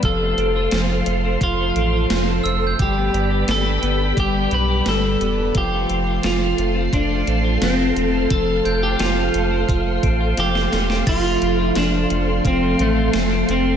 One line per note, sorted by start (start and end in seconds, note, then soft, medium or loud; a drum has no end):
0.00 0.34 F1 loud
0.00 1.41 F2 medium
0.00 0.10 G3 medium
0.00 0.10 B3 soft
0.00 0.10 D4 soft
0.00 2.76 A4 medium
0.00 2.76 C5 medium
0.00 2.76 F5 medium
0.00 2.76 C6 medium
0.00 2.56 F6 soft
0.00 kick medium
0.00 closed hi-hat medium
0.05 0.55 F4 medium
0.05 1.04 A4 medium
0.21 1.06 A3 medium
0.37 0.68 F1 loud
0.37 0.89 C4 medium
0.37 closed hi-hat soft
0.56 1.41 F4 medium
0.71 1.02 F1 loud
0.71 2.09 F3 medium
0.71 snare medium
0.71 closed hi-hat medium
0.90 1.24 C4 medium
1.06 1.37 F1 medium
1.06 1.58 A3 soft
1.06 closed hi-hat soft
1.25 1.75 C4 medium
1.41 1.72 F1 medium
1.41 2.79 F2 medium
1.41 1.92 F4 medium
1.41 2.42 F4 medium
1.41 kick medium
1.41 closed hi-hat medium
1.59 2.44 A3 soft
1.75 2.06 A1 medium
1.75 2.26 C4 soft
1.75 closed hi-hat soft
1.93 2.79 F4 soft
2.10 2.40 F1 medium
2.10 2.86 F3 medium
2.10 snare loud
2.10 closed hi-hat medium
2.27 2.61 C4 medium
2.44 2.75 F1 medium
2.44 2.86 A3 soft
2.44 3.09 E6 medium
2.44 closed hi-hat soft
2.62 2.86 C4 soft
2.67 3.29 G6 medium
2.79 3.10 G1 loud
2.79 4.16 G2 medium
2.79 5.52 G4 medium
2.79 3.30 G4 medium
2.79 3.51 G4 medium
2.79 5.52 B4 medium
2.79 5.52 D5 medium
2.79 5.52 B5 medium
2.79 kick loud
2.79 closed hi-hat medium
2.97 3.81 B3 medium
3.13 3.44 G1 loud
3.13 3.64 D4 medium
3.13 closed hi-hat soft
3.31 4.16 G4 medium
3.48 3.78 G1 loud
3.48 4.84 G3 medium
3.48 4.19 A4 medium
3.48 snare medium
3.48 closed hi-hat medium
3.65 3.98 D4 soft
3.82 4.13 G1 medium
3.82 4.33 B3 medium
3.82 closed hi-hat soft
3.99 4.51 D4 soft
4.17 4.47 G1 medium
4.17 5.55 G2 medium
4.17 4.67 G4 medium
4.17 4.54 G4 medium
4.17 kick medium
4.17 closed hi-hat medium
4.34 5.19 B3 medium
4.51 4.82 B1 medium
4.51 5.01 D4 medium
4.51 4.88 B4 loud
4.51 closed hi-hat soft
4.68 5.55 G4 medium
4.85 5.16 G1 medium
4.85 5.62 G3 medium
4.85 5.57 A4 medium
4.85 snare medium
4.85 closed hi-hat medium
5.03 5.37 D4 medium
5.20 5.51 E1 medium
5.20 5.62 B3 medium
5.20 closed hi-hat soft
5.38 5.62 D4 soft
5.55 5.85 F1 loud
5.55 6.93 F2 medium
5.55 6.06 F4 medium
5.55 6.27 G4 medium
5.55 11.03 A4 medium
5.55 11.03 C5 medium
5.55 8.28 F5 medium
5.55 11.03 C6 medium
5.55 kick medium
5.55 closed hi-hat medium
5.72 6.58 A3 medium
5.89 6.20 F1 medium
5.89 6.41 C4 medium
5.89 closed hi-hat soft
6.07 6.93 F4 medium
6.23 6.54 F1 medium
6.23 7.61 F3 medium
6.23 6.94 F4 medium
6.23 snare medium
6.23 closed hi-hat medium
6.41 6.75 C4 medium
6.58 6.89 F1 loud
6.58 7.10 A3 medium
6.58 closed hi-hat soft
6.75 7.27 C4 medium
6.93 7.23 F1 medium
6.93 7.64 D4 medium
6.93 7.44 F4 medium
6.93 kick medium
6.93 closed hi-hat medium
7.10 7.96 A3 medium
7.27 7.57 A1 medium
7.27 7.79 C4 medium
7.27 closed hi-hat soft
7.44 8.31 F4 medium
7.61 7.92 F1 medium
7.61 8.99 F3 medium
7.61 8.34 C4 medium
7.61 snare medium
7.61 closed hi-hat medium
7.79 8.13 C4 medium
7.96 8.27 E1 medium
7.96 8.47 A3 medium
7.96 closed hi-hat soft
8.13 8.65 C4 medium
8.30 8.61 F1 loud
8.30 9.69 F2 medium
8.30 8.82 F4 medium
8.30 8.79 A4 medium
8.30 11.04 F5 medium
8.30 kick loud
8.30 closed hi-hat medium
8.48 9.33 A3 medium
8.65 8.96 F1 loud
8.65 9.16 C4 soft
8.65 11.18 G6 medium
8.65 closed hi-hat soft
8.82 9.69 F4 medium
8.82 9.01 G4 medium
8.99 9.30 F1 medium
8.99 10.38 F3 medium
8.99 10.68 F4 medium
8.99 snare loud
8.99 closed hi-hat medium
9.16 9.51 C4 medium
9.34 9.65 F1 medium
9.34 9.86 A3 soft
9.34 closed hi-hat medium
9.51 10.03 C4 medium
9.69 9.99 F1 medium
9.69 10.20 F4 medium
9.69 kick medium
9.69 closed hi-hat medium
9.86 10.72 A3 soft
10.03 10.33 A1 medium
10.03 10.55 C4 medium
10.03 kick medium
10.03 closed hi-hat medium
10.20 11.07 F4 medium
10.37 10.68 F1 medium
10.37 11.75 F3 medium
10.37 11.09 G4 medium
10.37 snare soft
10.37 closed hi-hat medium
10.55 10.89 C4 medium
10.55 snare medium
10.72 11.03 E1 medium
10.72 11.24 A3 soft
10.72 snare medium
10.72 closed hi-hat soft
10.90 11.41 C4 soft
10.90 snare medium
11.06 11.37 F1 loud
11.06 12.44 F2 medium
11.06 11.58 F4 medium
11.06 13.77 A4 medium
11.06 13.77 C5 medium
11.06 13.77 F5 medium
11.06 13.77 C6 medium
11.06 13.59 A6 medium
11.06 kick loud
11.06 closed hi-hat medium
11.06 crash medium
11.24 12.09 A3 medium
11.41 11.72 F1 loud
11.41 11.92 C4 medium
11.41 closed hi-hat soft
11.58 11.79 E4 medium
11.58 12.44 F4 soft
11.75 12.06 F1 loud
11.75 13.12 F3 medium
11.75 12.47 D4 medium
11.75 snare loud
11.75 closed hi-hat medium
11.93 12.26 C4 medium
12.10 12.41 F1 medium
12.10 12.60 A3 medium
12.10 closed hi-hat soft
12.27 12.78 C4 soft
12.45 12.75 F1 medium
12.45 13.77 F2 medium
12.45 12.81 C4 medium
12.45 12.95 F4 medium
12.45 kick medium
12.45 closed hi-hat medium
12.62 13.47 A3 soft
12.79 13.10 A1 medium
12.79 13.51 A3 medium
12.79 13.30 C4 medium
12.79 closed hi-hat soft
12.96 13.77 F4 medium
13.13 13.44 F1 loud
13.13 13.77 F3 medium
13.13 snare loud
13.13 closed hi-hat medium
13.31 13.64 C4 medium
13.48 13.77 F1 medium
13.48 13.77 A3 medium
13.48 13.77 C4 medium
13.48 closed hi-hat soft
13.65 13.77 C4 soft